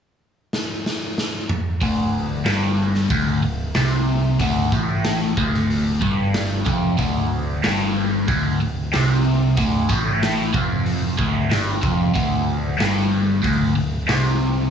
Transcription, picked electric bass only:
1.81 D1
2.45 G1
3.10 D1
3.43 D1
3.75 C2
4.39 D1
4.72 A1
5.37 D1
6.02 G1
6.66 F1
6.99 D1
7.65 G1
8.28 D1
8.62 D1
8.95 C2
9.57 D1
9.90 A1
10.54 F1
11.19 D1
11.52 G1
11.83 F1
12.16 D1
12.81 G1
13.44 D1
13.77 D1
14.10 C2

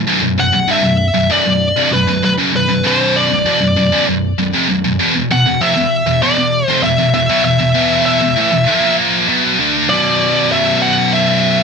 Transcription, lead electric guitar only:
0.40 F#5
0.71 E5
1.32 D5
1.93 B4
2.25 B4
2.56 B4
2.87 C5
3.16 D5
5.32 F#5
5.61 E5
6.23 D5
6.67 C5
6.83 E5
7.14 E5
7.45 E5
8.06 E5
9.89 D5
10.52 E5
10.82 F#5
11.13 E5

